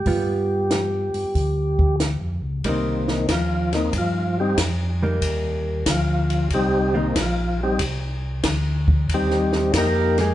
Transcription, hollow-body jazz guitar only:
X:1
M:4/4
L:1/8
Q:"Swing" 1/4=93
K:Cm
V:1 name="Hollow-body jazz guitar"
[G,=B,F]4- [G,B,F] z3 | [G,B,E] z6 [G,B,E]- | [G,B,E]2 z3 [G,B,E] z2 | z6 z [B,E] |]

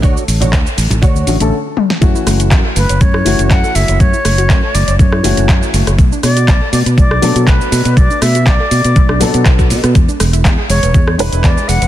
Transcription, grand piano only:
X:1
M:4/4
L:1/16
Q:"Swing 16ths" 1/4=121
K:F#m
V:1 name="Grand piano"
[D,A,Ac]8- [D,A,Ac]2 [D,A,CF] [D,A,CA] z4 | [E,A,CF]6 z4 [E,A,CF]6- | [E,A,CF]8- [E,A,CF]2 [E,A,CF]6 | z8 z2 [F,B,DA]6- |
[F,B,DA]8- [F,B,DA]2 [F,B,DA]6 | z8 z2 [G,DEB]6 |]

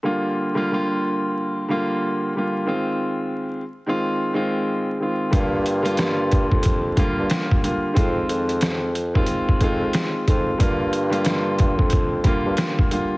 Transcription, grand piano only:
X:1
M:4/4
L:1/16
Q:"Swing 16ths" 1/4=91
K:Gphr
V:1 name="Grand piano"
[D,G,B,F]3 [D,G,B,F] [D,G,B,F]6 [D,G,B,F]4 [D,G,B,F]2 | [E,A,CF]6 z [E,A,CF]3 [E,A,CF]4 [E,A,CF]2 | [D,G,B,F]3 [D,G,B,F] [D,G,B,F]6 [D,G,B,F]4 [D,G,B,F]2 | [E,A,CF]6 z [E,A,CF]3 [E,A,CF]4 [E,A,CF]2 |
[D,G,B,F]3 [D,G,B,F] [D,G,B,F]6 [D,G,B,F]4 [D,G,B,F]2 |]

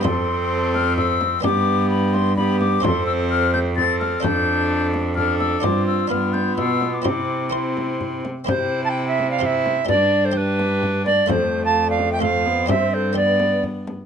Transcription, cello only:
X:1
M:3/4
L:1/8
Q:1/4=128
K:C
V:1 name="Cello" clef=bass
F,,6 | G,,6 | F,,6 | F,,6 |
G,,2 G,,2 B,,2 | C,4- C, z | C,6 | G,,6 |
F,,6 | G,,4- G,, z |]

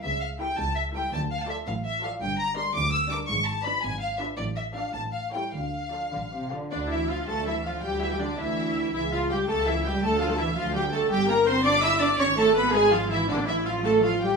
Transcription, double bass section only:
X:1
M:6/8
L:1/8
Q:3/8=110
K:Dm
V:1 name="Double bass section" clef=bass
^C,,3 C,,3 | D,,3 A,,,3 | G,,,3 D,,3 | ^G,,,3 G,,,3 |
A,,,3 A,,,3 | D,,3 A,,,3 | D,,3 D,,3 | D,,3 D,,3 |
^C,,3 C,,3 | D,,3 D,,3 | G,,,6 | ^G,,,6 |
A,,,6 |]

